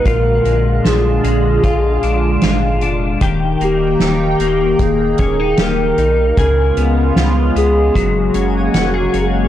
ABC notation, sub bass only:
X:1
M:4/4
L:1/8
Q:1/4=76
K:D#m
V:1 name="Sub bass" clef=bass
A,,, A,,, A,,, A,,, A,,, A,,, G,,, E,,, | D,,, D,,, D,,, D,,, D,,, D,,, D,,, B,,, | C,, C,, C,, C,, F,,, F,,, E,,, F,,, |]